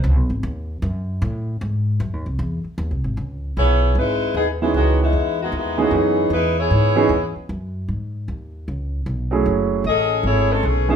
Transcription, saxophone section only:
X:1
M:4/4
L:1/8
Q:"Swing" 1/4=153
K:C#m
V:1 name="Saxophone section"
z8 | z8 | z2 [B,EGc]2 [G,DEB]2 [E,B,DG] [D,G,B,E] | [D,G,B,F] [G,B,DE]2 [D,G,B,F] [D,G,B,E] [D,G,B,F] [E,B,DG]2 |
[G,DEB] [B,EGc]4 z3 | z8 | z2 [CGAd]2 [A,EGc] [E,G,CA] [E,A,CG] [G,A,CE] |]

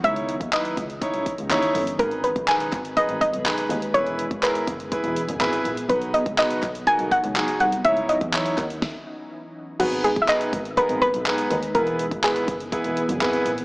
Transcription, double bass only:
X:1
M:4/4
L:1/16
Q:1/4=123
K:G#m
V:1 name="Double bass" clef=bass
C,, z2 D,,2 z C,,2 z B,,, z C,, D,,2 =G,,,2 | G,,, z2 B,,,2 z G,,,2 z G,,, z B,,, z2 D,,2 | E,,, z2 G,,,2 z F,,,2 z E,,, z F,,, G,,,2 A,,,2 | B,,, z2 C,,2 z B,,,2 z B,,, z C,, z2 ^B,,,2 |
C,, z2 E,,2 z D,,2 z8 | G,,, z2 B,,,2 z G,,,2 z G,,, z B,,, z2 D,,2 | E,,, z2 G,,,2 z F,,,2 z E,,, z F,,, G,,,2 A,,,2 |]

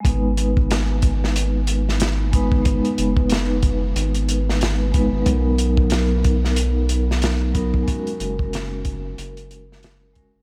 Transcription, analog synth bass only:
X:1
M:4/4
L:1/16
Q:"Swing 16ths" 1/4=92
K:G#m
V:1 name="Analog synth bass" clef=bass
G,,,16- | G,,, z F,,,6 G,,,6- G,,, G,,, | B,,,16 | z2 F,,,6 F,,,6- F,,, F,,, |]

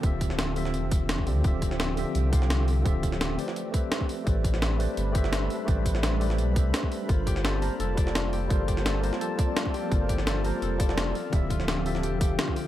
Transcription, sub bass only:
X:1
M:4/4
L:1/8
Q:1/4=170
K:Gdor
V:1 name="Sub bass" clef=bass
D,,,4 E,,,3 D,, | D,,,3 z C,,4 | D,,,3 z4 z | A,,,3 z G,,,3 z |
A,,,4 =B,,, C,, z2 | G,,,3 z F,,,4 | G,,,3 z4 z | G,,,3 z F,,,3 z |
D,,,4 E,,,2 z2 |]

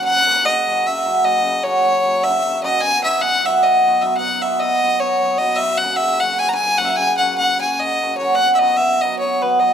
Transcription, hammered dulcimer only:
X:1
M:7/8
L:1/8
Q:1/4=151
K:F#mix
V:1 name="Hammered dulcimer"
z [F,A,CF] z [F,A,CF] z [F,A,CF] [F,A,CF] | z [F,A,CF] z [F,A,CF] z [F,A,CF] [F,A,CF] | z [F,B,DF] z [F,B,DF] z [F,B,DF] [F,B,DF] | z [F,B,DF] z [F,B,DF] z [F,B,DF] [F,B,DF] |
z [F,A,CF] z [F,A,CF] z [F,A,CF] [F,A,CF] | z [F,A,CF] z [F,A,CF] z [F,A,CF] [F,A,CF] | z [F,B,DF] z [F,B,DF] z [F,B,DF] [F,B,DF] |]
V:2 name="Hammered dulcimer" clef=bass
F,2 C,2 F,2 z | C,2 F,2 C,2 z | B,,2 B,,2 B,,2 z | B,,2 B,,2 B,,2 z |
F,2 C,2 F,2 z | C,2 F,2 C,2 z | B,,2 B,,2 B,,2 z |]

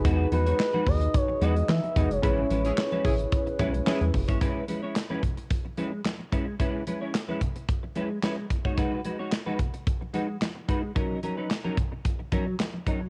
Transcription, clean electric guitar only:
X:1
M:4/4
L:1/16
Q:1/4=110
K:E
V:1 name="Clean electric guitar"
[G,DFB]2 [G,DFB] [G,DFc] z [G,DFB]2 z3 [G,DFB]2 z2 [G,DFB]2 | [G,CEB]2 [G,CEB] [G,CEc] z [G,CEB]2 z3 [G,CEB]2 [G,CEB]2 z [G,CEc] | [G,CEB]2 [G,CEB] [G,CEc] z [G,CEB]2 z3 [G,CEB]2 z2 [G,CEB]2 | [G,CEB]2 [G,CEB] [G,CEc] z [G,CEB]2 z3 [G,CEB]2 [G,CEB]2 z [G,DFc] |
[G,DFB]2 [G,DFB] [G,DFc] z [G,DFB]2 z3 [G,DFB]2 z2 [G,DFB]2 | [F,CD^A]2 [F,CDA] [F,CDB] z [F,CDA]2 z3 [F,CDA]2 z2 [F,CDA]2 |]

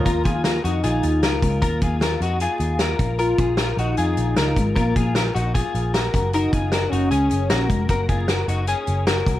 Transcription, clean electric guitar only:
X:1
M:4/4
L:1/8
Q:1/4=153
K:Ebdor
V:1 name="Clean electric guitar"
[FB] [FA] [FB] [EG] [FA]2 [FB]2 | [FB] [FA] [FB] [EG] [FA]2 [FB]2 | [FB] [FA] [FB] [EG] [FA]2 [FB]2 | [FB] [FA] [FB] [EG] [FA]2 [GB]2 |
[GB] [FA] [GB] [EG] [DA]2 [GB]2 | [GB] [FA] [GB] [EG] [DA]2 [GB]2 |]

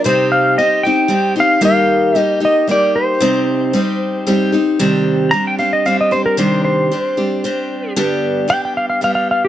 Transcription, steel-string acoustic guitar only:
X:1
M:3/4
L:1/8
Q:1/4=114
K:Cm
V:1 name="Steel-string acoustic guitar"
[C,G,CEG]2 [G,CEG] [CEG] [G,CEG] [CEG] | [E,G,B,EG]2 [G,B,EG] [B,EG] [G,B,EG]2 | [C,G,CEG]2 [G,CEG]2 [G,CEG] [CEG] | [C,E,G,CDG]2 [G,CDG] [G,CDG] [G,CDG] [G,CDG] |
[C,E,G,CDG]2 [G,CDG] [G,CDG] [G,CDG]2 | [G,,D,G,=B,DG]2 [G,B,DG]2 [G,B,DG]2 |]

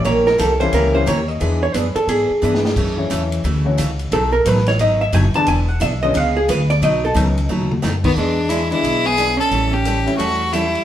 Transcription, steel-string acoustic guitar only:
X:1
M:4/4
L:1/16
Q:"Swing" 1/4=177
K:Emix
V:1 name="Steel-string acoustic guitar"
[E,^A,C=G^A]2 z2 [E,A,CGA] z3 [E,A,CGA]2 z2 [E,A,CGA] z3 | [E,B,DG]2 z2 [E,B,DG] z3 [E,B,DG]2 z2 [E,B,DG] z3 | [C,E,A,CF]2 z2 [C,E,A,CF] z3 [C,E,A,CF]2 z2 [C,E,A,CF] z3 | [B,,F,A,^DF]2 z2 [B,,F,A,DF] z3 [B,,F,A,DF]2 z2 [B,,F,A,DF] z3 |
[E,B,DG]2 z2 [E,B,DG] z3 [C,G,B,^EG]2 z2 [C,G,B,EG] z3 | [B,,F,A,^DF]2 z2 [B,,F,A,DF] z3 [B,,F,A,DF]2 z2 [B,,F,A,DF] z3 | [E,B,DG]2 z2 [E,B,DG] z3 [E,B,DG]2 z2 [E,B,DG] z3 | [E,=G,CEA]2 z2 [E,G,CEA] z3 [E,G,CEA]2 z2 [E,G,CEA] z3 |]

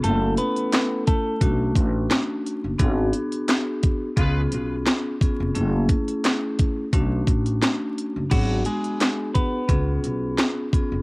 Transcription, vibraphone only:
X:1
M:4/4
L:1/8
Q:"Swing 16ths" 1/4=87
K:F#m
V:1 name="Vibraphone"
[A,CEA]4 [A,CDF]4 | [B,DFG]4 [B,C^EG]3 [B,CEG] | [A,CEG]4 [A,CDF]4 | [B,DFG]4 [B,C^EG]3 [B,CEG] |]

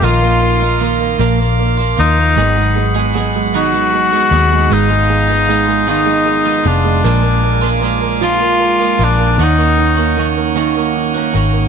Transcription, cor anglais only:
X:1
M:6/8
L:1/8
Q:3/8=51
K:Bbphr
V:1 name="Cor anglais"
F2 z3 E- | E2 z G3 | E3 E2 =D- | =D2 z F2 D |
E2 z4 |]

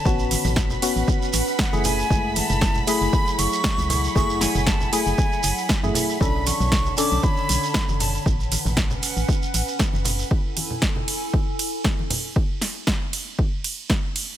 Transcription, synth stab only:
X:1
M:4/4
L:1/16
Q:"Swing 16ths" 1/4=117
K:F#m
V:1 name="Synth stab"
[B,CF]6 [B,CF]4 z3 [A,EG]3 | [G,A,E]6 [A,EG]8- [A,EG]2 | [A,EG]6 [A,EG]4 z3 [A,EG]3 | [CDA]6 [CDA]8- [CDA]2 |
z16 | z16 | z16 |]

